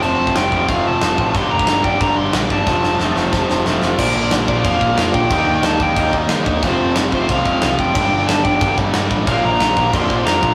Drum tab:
CC |x---x---x---x---|x---x---x---x---|----------------|x---x---x---x---|
SD |----o-------o---|----o-------o---|o-o-o-o-o-o-o-o-|----o-------o---|
BD |---o--o-o-----o-|o--o--o-o-----o-|o-------o-------|o-----o-o-o---o-|

CC |x---x---x---x---|x---x---x---x---|x---x---x---x---|x---x---x---x---|
SD |----o-------o---|----o-------o---|----o-------o---|----o-------o---|
BD |o-----o-o-o---o-|o-----o-o-o---o-|o-----o-o-o---o-|o-----o-o-o---o-|